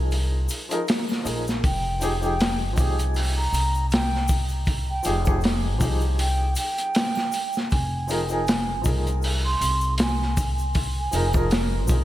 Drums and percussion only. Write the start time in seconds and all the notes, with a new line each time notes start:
0.11 open hi-hat, shaker
0.49 open hi-hat, shaker
0.71 closed hi-hat, shaker
0.87 snare, open hi-hat, shaker
1.09 snare, triangle
1.25 open hi-hat, shaker
1.47 snare, shaker
1.64 kick, open hi-hat, shaker
2.01 open hi-hat, shaker
2.22 shaker
2.40 snare, open hi-hat, shaker
2.77 kick, open hi-hat, shaker
2.99 closed hi-hat, shaker
3.14 open hi-hat, shaker
3.53 open hi-hat, shaker
3.75 shaker
3.90 snare, open hi-hat, shaker
4.15 snare
4.28 kick, open hi-hat, shaker
4.49 shaker
4.66 kick, open hi-hat, shaker
5.03 open hi-hat, shaker
5.25 kick, triangle, shaker
5.41 open hi-hat, shaker
5.45 snare
5.80 kick, open hi-hat, shaker
6.01 shaker
6.18 open hi-hat, shaker
6.55 open hi-hat, shaker
6.77 closed hi-hat, shaker
6.94 snare, open hi-hat, shaker
7.15 snare, triangle
7.32 open hi-hat, shaker
7.53 shaker
7.57 snare
7.70 kick, open hi-hat, shaker
8.08 open hi-hat, shaker
8.29 shaker
8.47 snare, open hi-hat, shaker
8.84 kick, open hi-hat, shaker
9.07 closed hi-hat, shaker
9.22 open hi-hat, shaker
9.61 open hi-hat, shaker
9.81 shaker
9.98 snare, open hi-hat, shaker
10.22 snare
10.37 kick, open hi-hat, shaker
10.58 shaker
10.74 kick, open hi-hat, shaker
11.12 open hi-hat, shaker
11.33 kick, triangle, shaker
11.50 snare, open hi-hat, shaker
11.88 kick, open hi-hat, shaker